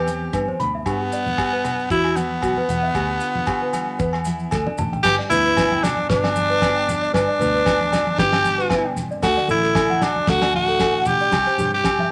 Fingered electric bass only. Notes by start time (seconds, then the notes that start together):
Already playing: E2
0.33 G2
0.60 D2
0.86 G2
1.90 E2
2.42 B1
2.69 E2
2.95 D2
3.99 E2
4.52 D2
4.78 A1
5.05 G1
5.31 D2
6.09 G1
7.14 G1
7.39 D2
8.19 G1
9.23 D2
9.48 A1
10.28 D2
11.32 C2
11.58 G2